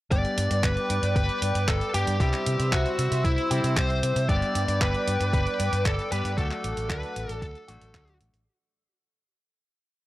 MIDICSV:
0, 0, Header, 1, 6, 480
1, 0, Start_track
1, 0, Key_signature, 1, "major"
1, 0, Tempo, 521739
1, 109, Time_signature, 4, 2, 24, 8
1, 9255, End_track
2, 0, Start_track
2, 0, Title_t, "Analog synth pad"
2, 0, Program_c, 0, 89
2, 107, Note_on_c, 0, 71, 83
2, 107, Note_on_c, 0, 74, 75
2, 107, Note_on_c, 0, 86, 91
2, 108, Note_on_c, 0, 79, 74
2, 2008, Note_off_c, 0, 71, 0
2, 2008, Note_off_c, 0, 74, 0
2, 2008, Note_off_c, 0, 86, 0
2, 2009, Note_off_c, 0, 79, 0
2, 2027, Note_on_c, 0, 88, 91
2, 2028, Note_on_c, 0, 72, 81
2, 2028, Note_on_c, 0, 76, 76
2, 3928, Note_off_c, 0, 88, 0
2, 3929, Note_off_c, 0, 72, 0
2, 3929, Note_off_c, 0, 76, 0
2, 3948, Note_on_c, 0, 71, 84
2, 3948, Note_on_c, 0, 74, 78
2, 3949, Note_on_c, 0, 79, 76
2, 3949, Note_on_c, 0, 86, 92
2, 5849, Note_off_c, 0, 71, 0
2, 5849, Note_off_c, 0, 79, 0
2, 5867, Note_on_c, 0, 69, 83
2, 5867, Note_on_c, 0, 78, 76
2, 7752, Note_off_c, 0, 74, 0
2, 7752, Note_off_c, 0, 86, 0
2, 7768, Note_off_c, 0, 78, 0
2, 7769, Note_off_c, 0, 69, 0
2, 9255, End_track
3, 0, Start_track
3, 0, Title_t, "Lead electric guitar"
3, 0, Program_c, 1, 29
3, 109, Note_on_c, 1, 74, 112
3, 587, Note_off_c, 1, 74, 0
3, 590, Note_on_c, 1, 71, 96
3, 1059, Note_off_c, 1, 71, 0
3, 1070, Note_on_c, 1, 71, 104
3, 1550, Note_on_c, 1, 69, 101
3, 1564, Note_off_c, 1, 71, 0
3, 1772, Note_off_c, 1, 69, 0
3, 1789, Note_on_c, 1, 67, 91
3, 2020, Note_off_c, 1, 67, 0
3, 2031, Note_on_c, 1, 67, 101
3, 2511, Note_on_c, 1, 66, 88
3, 2524, Note_off_c, 1, 67, 0
3, 2985, Note_off_c, 1, 66, 0
3, 2989, Note_on_c, 1, 64, 92
3, 3468, Note_on_c, 1, 72, 99
3, 3483, Note_off_c, 1, 64, 0
3, 3946, Note_off_c, 1, 72, 0
3, 3949, Note_on_c, 1, 74, 110
3, 4395, Note_off_c, 1, 74, 0
3, 4431, Note_on_c, 1, 71, 92
3, 4898, Note_off_c, 1, 71, 0
3, 4909, Note_on_c, 1, 71, 99
3, 5386, Note_off_c, 1, 71, 0
3, 5390, Note_on_c, 1, 69, 93
3, 5612, Note_off_c, 1, 69, 0
3, 5628, Note_on_c, 1, 71, 90
3, 5864, Note_off_c, 1, 71, 0
3, 5867, Note_on_c, 1, 69, 98
3, 6344, Note_off_c, 1, 69, 0
3, 6348, Note_on_c, 1, 71, 91
3, 6824, Note_off_c, 1, 71, 0
3, 6827, Note_on_c, 1, 69, 88
3, 7511, Note_off_c, 1, 69, 0
3, 9255, End_track
4, 0, Start_track
4, 0, Title_t, "Clean electric guitar"
4, 0, Program_c, 2, 27
4, 104, Note_on_c, 2, 55, 95
4, 108, Note_on_c, 2, 59, 85
4, 112, Note_on_c, 2, 62, 79
4, 114, Note_on_c, 2, 67, 95
4, 1759, Note_off_c, 2, 55, 0
4, 1759, Note_off_c, 2, 59, 0
4, 1759, Note_off_c, 2, 62, 0
4, 1759, Note_off_c, 2, 67, 0
4, 1784, Note_on_c, 2, 67, 93
4, 1787, Note_on_c, 2, 62, 73
4, 1793, Note_on_c, 2, 59, 67
4, 1798, Note_on_c, 2, 55, 73
4, 1983, Note_off_c, 2, 62, 0
4, 1984, Note_off_c, 2, 55, 0
4, 1984, Note_off_c, 2, 59, 0
4, 1984, Note_off_c, 2, 67, 0
4, 2026, Note_on_c, 2, 55, 83
4, 2029, Note_on_c, 2, 60, 73
4, 2033, Note_on_c, 2, 64, 76
4, 3199, Note_off_c, 2, 55, 0
4, 3199, Note_off_c, 2, 60, 0
4, 3199, Note_off_c, 2, 64, 0
4, 3225, Note_on_c, 2, 67, 107
4, 3228, Note_on_c, 2, 64, 85
4, 3232, Note_on_c, 2, 60, 77
4, 3235, Note_on_c, 2, 55, 76
4, 3919, Note_off_c, 2, 55, 0
4, 3919, Note_off_c, 2, 60, 0
4, 3919, Note_off_c, 2, 64, 0
4, 3919, Note_off_c, 2, 67, 0
4, 3944, Note_on_c, 2, 55, 98
4, 3949, Note_on_c, 2, 59, 88
4, 3953, Note_on_c, 2, 62, 78
4, 3957, Note_on_c, 2, 67, 88
4, 5599, Note_off_c, 2, 55, 0
4, 5599, Note_off_c, 2, 59, 0
4, 5599, Note_off_c, 2, 62, 0
4, 5599, Note_off_c, 2, 67, 0
4, 5625, Note_on_c, 2, 67, 90
4, 5628, Note_on_c, 2, 62, 80
4, 5633, Note_on_c, 2, 59, 75
4, 5637, Note_on_c, 2, 55, 79
4, 5824, Note_off_c, 2, 55, 0
4, 5824, Note_off_c, 2, 59, 0
4, 5824, Note_off_c, 2, 62, 0
4, 5824, Note_off_c, 2, 67, 0
4, 5865, Note_on_c, 2, 54, 83
4, 5869, Note_on_c, 2, 57, 82
4, 5873, Note_on_c, 2, 62, 75
4, 5877, Note_on_c, 2, 66, 87
4, 7040, Note_off_c, 2, 54, 0
4, 7040, Note_off_c, 2, 57, 0
4, 7040, Note_off_c, 2, 62, 0
4, 7040, Note_off_c, 2, 66, 0
4, 7065, Note_on_c, 2, 66, 108
4, 7069, Note_on_c, 2, 62, 81
4, 7073, Note_on_c, 2, 57, 80
4, 7076, Note_on_c, 2, 54, 82
4, 7760, Note_off_c, 2, 54, 0
4, 7760, Note_off_c, 2, 57, 0
4, 7760, Note_off_c, 2, 62, 0
4, 7760, Note_off_c, 2, 66, 0
4, 9255, End_track
5, 0, Start_track
5, 0, Title_t, "Fingered electric bass"
5, 0, Program_c, 3, 33
5, 106, Note_on_c, 3, 31, 96
5, 212, Note_off_c, 3, 31, 0
5, 347, Note_on_c, 3, 43, 92
5, 452, Note_off_c, 3, 43, 0
5, 467, Note_on_c, 3, 43, 102
5, 572, Note_off_c, 3, 43, 0
5, 586, Note_on_c, 3, 31, 88
5, 692, Note_off_c, 3, 31, 0
5, 828, Note_on_c, 3, 43, 81
5, 932, Note_off_c, 3, 43, 0
5, 946, Note_on_c, 3, 43, 100
5, 1052, Note_off_c, 3, 43, 0
5, 1065, Note_on_c, 3, 31, 93
5, 1171, Note_off_c, 3, 31, 0
5, 1307, Note_on_c, 3, 43, 97
5, 1412, Note_off_c, 3, 43, 0
5, 1427, Note_on_c, 3, 43, 96
5, 1532, Note_off_c, 3, 43, 0
5, 1545, Note_on_c, 3, 31, 85
5, 1651, Note_off_c, 3, 31, 0
5, 1788, Note_on_c, 3, 43, 98
5, 1893, Note_off_c, 3, 43, 0
5, 1909, Note_on_c, 3, 43, 89
5, 2013, Note_off_c, 3, 43, 0
5, 2026, Note_on_c, 3, 36, 99
5, 2131, Note_off_c, 3, 36, 0
5, 2268, Note_on_c, 3, 48, 93
5, 2373, Note_off_c, 3, 48, 0
5, 2388, Note_on_c, 3, 48, 103
5, 2493, Note_off_c, 3, 48, 0
5, 2506, Note_on_c, 3, 36, 91
5, 2612, Note_off_c, 3, 36, 0
5, 2747, Note_on_c, 3, 48, 84
5, 2852, Note_off_c, 3, 48, 0
5, 2866, Note_on_c, 3, 48, 102
5, 2972, Note_off_c, 3, 48, 0
5, 2987, Note_on_c, 3, 36, 97
5, 3092, Note_off_c, 3, 36, 0
5, 3227, Note_on_c, 3, 48, 86
5, 3332, Note_off_c, 3, 48, 0
5, 3347, Note_on_c, 3, 48, 82
5, 3452, Note_off_c, 3, 48, 0
5, 3467, Note_on_c, 3, 36, 78
5, 3676, Note_off_c, 3, 36, 0
5, 3707, Note_on_c, 3, 48, 82
5, 3812, Note_off_c, 3, 48, 0
5, 3828, Note_on_c, 3, 48, 99
5, 3932, Note_off_c, 3, 48, 0
5, 3947, Note_on_c, 3, 31, 98
5, 4052, Note_off_c, 3, 31, 0
5, 4188, Note_on_c, 3, 43, 93
5, 4293, Note_off_c, 3, 43, 0
5, 4307, Note_on_c, 3, 43, 102
5, 4412, Note_off_c, 3, 43, 0
5, 4427, Note_on_c, 3, 31, 93
5, 4532, Note_off_c, 3, 31, 0
5, 4668, Note_on_c, 3, 43, 85
5, 4773, Note_off_c, 3, 43, 0
5, 4788, Note_on_c, 3, 43, 101
5, 4893, Note_off_c, 3, 43, 0
5, 4907, Note_on_c, 3, 31, 92
5, 5012, Note_off_c, 3, 31, 0
5, 5149, Note_on_c, 3, 43, 100
5, 5253, Note_off_c, 3, 43, 0
5, 5268, Note_on_c, 3, 43, 100
5, 5373, Note_off_c, 3, 43, 0
5, 5388, Note_on_c, 3, 31, 86
5, 5493, Note_off_c, 3, 31, 0
5, 5628, Note_on_c, 3, 43, 99
5, 5733, Note_off_c, 3, 43, 0
5, 5749, Note_on_c, 3, 43, 91
5, 5853, Note_off_c, 3, 43, 0
5, 5868, Note_on_c, 3, 38, 96
5, 5972, Note_off_c, 3, 38, 0
5, 6110, Note_on_c, 3, 33, 94
5, 6214, Note_off_c, 3, 33, 0
5, 6230, Note_on_c, 3, 33, 103
5, 6333, Note_off_c, 3, 33, 0
5, 6348, Note_on_c, 3, 38, 93
5, 6453, Note_off_c, 3, 38, 0
5, 6590, Note_on_c, 3, 33, 85
5, 6693, Note_off_c, 3, 33, 0
5, 6710, Note_on_c, 3, 33, 101
5, 6814, Note_off_c, 3, 33, 0
5, 6828, Note_on_c, 3, 38, 96
5, 6933, Note_off_c, 3, 38, 0
5, 7071, Note_on_c, 3, 33, 85
5, 7174, Note_off_c, 3, 33, 0
5, 7190, Note_on_c, 3, 33, 80
5, 7294, Note_off_c, 3, 33, 0
5, 7308, Note_on_c, 3, 38, 86
5, 7517, Note_off_c, 3, 38, 0
5, 7549, Note_on_c, 3, 33, 94
5, 7653, Note_off_c, 3, 33, 0
5, 7669, Note_on_c, 3, 33, 98
5, 7773, Note_off_c, 3, 33, 0
5, 9255, End_track
6, 0, Start_track
6, 0, Title_t, "Drums"
6, 106, Note_on_c, 9, 36, 119
6, 108, Note_on_c, 9, 42, 55
6, 198, Note_off_c, 9, 36, 0
6, 200, Note_off_c, 9, 42, 0
6, 228, Note_on_c, 9, 42, 27
6, 320, Note_off_c, 9, 42, 0
6, 347, Note_on_c, 9, 42, 94
6, 439, Note_off_c, 9, 42, 0
6, 467, Note_on_c, 9, 42, 55
6, 559, Note_off_c, 9, 42, 0
6, 586, Note_on_c, 9, 36, 115
6, 587, Note_on_c, 9, 39, 119
6, 587, Note_on_c, 9, 42, 54
6, 678, Note_off_c, 9, 36, 0
6, 679, Note_off_c, 9, 39, 0
6, 679, Note_off_c, 9, 42, 0
6, 708, Note_on_c, 9, 42, 27
6, 800, Note_off_c, 9, 42, 0
6, 828, Note_on_c, 9, 42, 94
6, 920, Note_off_c, 9, 42, 0
6, 947, Note_on_c, 9, 42, 57
6, 1039, Note_off_c, 9, 42, 0
6, 1066, Note_on_c, 9, 36, 113
6, 1068, Note_on_c, 9, 42, 52
6, 1158, Note_off_c, 9, 36, 0
6, 1160, Note_off_c, 9, 42, 0
6, 1188, Note_on_c, 9, 42, 27
6, 1280, Note_off_c, 9, 42, 0
6, 1308, Note_on_c, 9, 42, 95
6, 1400, Note_off_c, 9, 42, 0
6, 1428, Note_on_c, 9, 42, 53
6, 1520, Note_off_c, 9, 42, 0
6, 1546, Note_on_c, 9, 36, 116
6, 1548, Note_on_c, 9, 39, 114
6, 1548, Note_on_c, 9, 42, 53
6, 1638, Note_off_c, 9, 36, 0
6, 1640, Note_off_c, 9, 39, 0
6, 1640, Note_off_c, 9, 42, 0
6, 1668, Note_on_c, 9, 42, 27
6, 1760, Note_off_c, 9, 42, 0
6, 1788, Note_on_c, 9, 42, 94
6, 1880, Note_off_c, 9, 42, 0
6, 1908, Note_on_c, 9, 42, 54
6, 2000, Note_off_c, 9, 42, 0
6, 2026, Note_on_c, 9, 36, 125
6, 2028, Note_on_c, 9, 42, 54
6, 2118, Note_off_c, 9, 36, 0
6, 2120, Note_off_c, 9, 42, 0
6, 2148, Note_on_c, 9, 39, 38
6, 2148, Note_on_c, 9, 42, 27
6, 2240, Note_off_c, 9, 39, 0
6, 2240, Note_off_c, 9, 42, 0
6, 2267, Note_on_c, 9, 42, 94
6, 2359, Note_off_c, 9, 42, 0
6, 2388, Note_on_c, 9, 42, 54
6, 2480, Note_off_c, 9, 42, 0
6, 2506, Note_on_c, 9, 36, 117
6, 2508, Note_on_c, 9, 39, 122
6, 2508, Note_on_c, 9, 42, 52
6, 2598, Note_off_c, 9, 36, 0
6, 2600, Note_off_c, 9, 39, 0
6, 2600, Note_off_c, 9, 42, 0
6, 2629, Note_on_c, 9, 42, 27
6, 2721, Note_off_c, 9, 42, 0
6, 2749, Note_on_c, 9, 42, 91
6, 2841, Note_off_c, 9, 42, 0
6, 2869, Note_on_c, 9, 42, 53
6, 2961, Note_off_c, 9, 42, 0
6, 2986, Note_on_c, 9, 36, 119
6, 2989, Note_on_c, 9, 42, 52
6, 3078, Note_off_c, 9, 36, 0
6, 3081, Note_off_c, 9, 42, 0
6, 3110, Note_on_c, 9, 42, 27
6, 3202, Note_off_c, 9, 42, 0
6, 3229, Note_on_c, 9, 42, 90
6, 3321, Note_off_c, 9, 42, 0
6, 3349, Note_on_c, 9, 42, 53
6, 3441, Note_off_c, 9, 42, 0
6, 3466, Note_on_c, 9, 36, 120
6, 3469, Note_on_c, 9, 39, 117
6, 3469, Note_on_c, 9, 42, 52
6, 3558, Note_off_c, 9, 36, 0
6, 3561, Note_off_c, 9, 39, 0
6, 3561, Note_off_c, 9, 42, 0
6, 3589, Note_on_c, 9, 42, 26
6, 3681, Note_off_c, 9, 42, 0
6, 3709, Note_on_c, 9, 42, 90
6, 3801, Note_off_c, 9, 42, 0
6, 3829, Note_on_c, 9, 42, 52
6, 3921, Note_off_c, 9, 42, 0
6, 3947, Note_on_c, 9, 36, 126
6, 3949, Note_on_c, 9, 42, 51
6, 4039, Note_off_c, 9, 36, 0
6, 4041, Note_off_c, 9, 42, 0
6, 4069, Note_on_c, 9, 42, 26
6, 4161, Note_off_c, 9, 42, 0
6, 4189, Note_on_c, 9, 42, 93
6, 4281, Note_off_c, 9, 42, 0
6, 4309, Note_on_c, 9, 42, 51
6, 4401, Note_off_c, 9, 42, 0
6, 4427, Note_on_c, 9, 36, 119
6, 4429, Note_on_c, 9, 39, 123
6, 4429, Note_on_c, 9, 42, 51
6, 4519, Note_off_c, 9, 36, 0
6, 4521, Note_off_c, 9, 39, 0
6, 4521, Note_off_c, 9, 42, 0
6, 4549, Note_on_c, 9, 42, 26
6, 4641, Note_off_c, 9, 42, 0
6, 4669, Note_on_c, 9, 42, 88
6, 4761, Note_off_c, 9, 42, 0
6, 4789, Note_on_c, 9, 42, 51
6, 4881, Note_off_c, 9, 42, 0
6, 4907, Note_on_c, 9, 36, 124
6, 4910, Note_on_c, 9, 42, 51
6, 4999, Note_off_c, 9, 36, 0
6, 5002, Note_off_c, 9, 42, 0
6, 5029, Note_on_c, 9, 42, 25
6, 5121, Note_off_c, 9, 42, 0
6, 5149, Note_on_c, 9, 42, 89
6, 5241, Note_off_c, 9, 42, 0
6, 5269, Note_on_c, 9, 42, 52
6, 5361, Note_off_c, 9, 42, 0
6, 5387, Note_on_c, 9, 36, 125
6, 5390, Note_on_c, 9, 39, 120
6, 5390, Note_on_c, 9, 42, 50
6, 5479, Note_off_c, 9, 36, 0
6, 5482, Note_off_c, 9, 39, 0
6, 5482, Note_off_c, 9, 42, 0
6, 5510, Note_on_c, 9, 42, 26
6, 5602, Note_off_c, 9, 42, 0
6, 5629, Note_on_c, 9, 42, 92
6, 5721, Note_off_c, 9, 42, 0
6, 5750, Note_on_c, 9, 42, 51
6, 5842, Note_off_c, 9, 42, 0
6, 5867, Note_on_c, 9, 36, 124
6, 5870, Note_on_c, 9, 42, 50
6, 5959, Note_off_c, 9, 36, 0
6, 5962, Note_off_c, 9, 42, 0
6, 5989, Note_on_c, 9, 39, 39
6, 5989, Note_on_c, 9, 42, 25
6, 6081, Note_off_c, 9, 39, 0
6, 6081, Note_off_c, 9, 42, 0
6, 6110, Note_on_c, 9, 42, 90
6, 6202, Note_off_c, 9, 42, 0
6, 6229, Note_on_c, 9, 42, 50
6, 6321, Note_off_c, 9, 42, 0
6, 6347, Note_on_c, 9, 36, 118
6, 6350, Note_on_c, 9, 39, 119
6, 6350, Note_on_c, 9, 42, 51
6, 6439, Note_off_c, 9, 36, 0
6, 6442, Note_off_c, 9, 39, 0
6, 6442, Note_off_c, 9, 42, 0
6, 6470, Note_on_c, 9, 42, 25
6, 6562, Note_off_c, 9, 42, 0
6, 6589, Note_on_c, 9, 42, 86
6, 6681, Note_off_c, 9, 42, 0
6, 6709, Note_on_c, 9, 42, 51
6, 6801, Note_off_c, 9, 42, 0
6, 6828, Note_on_c, 9, 36, 124
6, 6830, Note_on_c, 9, 42, 50
6, 6920, Note_off_c, 9, 36, 0
6, 6922, Note_off_c, 9, 42, 0
6, 6950, Note_on_c, 9, 42, 24
6, 7042, Note_off_c, 9, 42, 0
6, 7070, Note_on_c, 9, 42, 90
6, 7162, Note_off_c, 9, 42, 0
6, 7190, Note_on_c, 9, 42, 49
6, 7282, Note_off_c, 9, 42, 0
6, 7307, Note_on_c, 9, 36, 123
6, 7310, Note_on_c, 9, 39, 119
6, 7310, Note_on_c, 9, 42, 48
6, 7399, Note_off_c, 9, 36, 0
6, 7402, Note_off_c, 9, 39, 0
6, 7402, Note_off_c, 9, 42, 0
6, 7430, Note_on_c, 9, 42, 25
6, 7522, Note_off_c, 9, 42, 0
6, 7550, Note_on_c, 9, 42, 88
6, 7642, Note_off_c, 9, 42, 0
6, 7670, Note_on_c, 9, 42, 51
6, 7762, Note_off_c, 9, 42, 0
6, 9255, End_track
0, 0, End_of_file